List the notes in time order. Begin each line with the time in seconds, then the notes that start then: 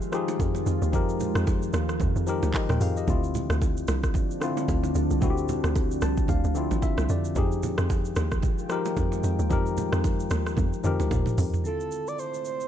Already playing: D#3 F3 G#3 D#4 F4 G4 G#4
0.02 shaker
0.12 F3 D#4 G4 G#4, cross-stick, shaker
0.28 low bongo, shaker
0.40 F2, kick, high bongo, shaker
0.55 low bongo, shaker
0.66 F2, high bongo, shaker
0.82 D#2, shaker
0.92 F2 F3 D#4 G4 A#4, kick, low conga, shaker
1.09 shaker
1.20 low bongo, low conga, shaker
1.35 F2, cross-stick, shaker
1.47 kick, high bongo, shaker
1.62 shaker
1.73 D#2, cross-stick, low bongo, shaker
1.89 cross-stick, shaker
2.00 F2, kick, high bongo, low conga, shaker
2.16 F2, shaker
2.26 F3 D#4 G4 A#4, shaker
2.43 D2, low bongo, shaker
2.54 G4 D#5, kick, clap, high bongo, shaker
2.69 D#2 A#4 G5, cross-stick, mid tom, low bongo, shaker
2.81 F2 G#4 F5, open hi-hat, high bongo, shaker
2.97 G4 D#5, shaker
3.07 D2 D3 F3 C4 D4 E4 F4, kick, low conga, shaker
3.24 shaker
3.35 low bongo, low conga, shaker
3.50 D2, cross-stick, shaker
3.62 kick, high bongo, shaker
3.77 shaker
3.88 C2, cross-stick, low bongo, shaker
4.04 kick, cross-stick, shaker
4.14 kick, low conga, shaker
4.31 shaker
4.41 D3 C4 E4 F4, cross-stick, shaker
4.57 low bongo, shaker
4.68 D2, kick, high bongo, shaker
4.83 low bongo, shaker
4.95 D2, high bongo, shaker
5.11 C2, shaker
5.21 D2 D3 C4 E4 F#4, kick, low conga, shaker
5.30 G4
5.37 shaker
5.48 low bongo, low conga, shaker
5.64 D2, cross-stick, shaker
5.76 kick, high bongo, shaker
5.91 shaker
6.01 C2 A5, cross-stick, low bongo, shaker
6.17 kick, shaker
6.28 D2 F5, kick, low conga, shaker
6.44 D2, shaker
6.55 D3 C4 E4 F4, shaker
6.71 A1, low bongo, shaker
6.82 E5, kick, high bongo, shaker
6.97 C2, cross-stick, low bongo, shaker
7.09 F2 D5, high bongo, shaker
7.25 shaker
7.35 F2 D#3 F3 G#3 D#4 F4 G4 G#4 G5, kick, low conga, shaker
7.52 shaker
7.63 low bongo, low conga, shaker
7.78 F2, cross-stick, shaker
7.90 kick, high bongo, shaker
8.05 shaker
8.16 D#2, cross-stick, low bongo, shaker
8.32 kick, cross-stick, shaker
8.42 kick, low conga, shaker
8.58 shaker
8.69 F3 D#4 G4 A#4, cross-stick, shaker
8.85 low bongo, shaker
8.97 F2, kick, high bongo, shaker
9.12 low bongo, shaker
9.24 F2, high bongo, shaker
9.39 D#2, shaker
9.50 F2 F3 D#4 G4 A#4, kick, low conga, shaker
9.66 shaker
9.77 low bongo, low conga, shaker
9.93 F2, cross-stick, shaker
10.04 kick, high bongo, shaker
10.20 shaker
10.30 D#2, cross-stick, low bongo, shaker
10.46 cross-stick, shaker
10.57 F2, kick, high tom, high bongo, low conga, shaker
10.73 shaker
10.83 F2 F3 D#4 G4 A#4, mid tom, shaker
11.00 D2, low bongo, shaker
11.11 D#2, kick, mid tom, high bongo, shaker
11.26 mid tom, low bongo, shaker
11.38 F2, floor tom, open hi-hat, high bongo, shaker
11.54 floor tom, shaker
11.62 D3 A3 C4 A4 E5, shaker
11.66 E4 F4
11.80 shaker
11.92 shaker
12.07 D5, shaker
12.19 C5, shaker
12.34 shaker
12.45 C5, shaker
12.61 shaker